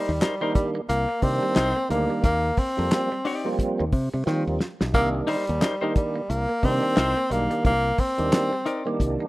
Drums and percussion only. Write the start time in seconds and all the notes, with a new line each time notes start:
0.21 snare, clap, closed hi-hat
0.55 kick, closed hi-hat
0.90 closed hi-hat
1.22 kick, open hi-hat
1.56 snare, clap, closed hi-hat
1.91 closed hi-hat
2.24 kick, closed hi-hat
2.57 kick, open hi-hat
2.91 snare, clap, closed hi-hat
3.25 open hi-hat
3.59 kick, closed hi-hat
3.92 kick, open hi-hat
4.27 snare
4.60 snare
4.81 snare
4.94 kick, closed hi-hat
5.27 open hi-hat
5.47 closed hi-hat
5.61 snare, clap, closed hi-hat
5.96 kick, closed hi-hat
6.31 closed hi-hat
6.63 kick, open hi-hat
6.97 snare, clap, closed hi-hat
7.31 closed hi-hat
7.51 closed hi-hat
7.65 kick, closed hi-hat
7.98 kick, open hi-hat
8.18 closed hi-hat
8.32 snare, clap, closed hi-hat
8.66 closed hi-hat
9.00 kick, closed hi-hat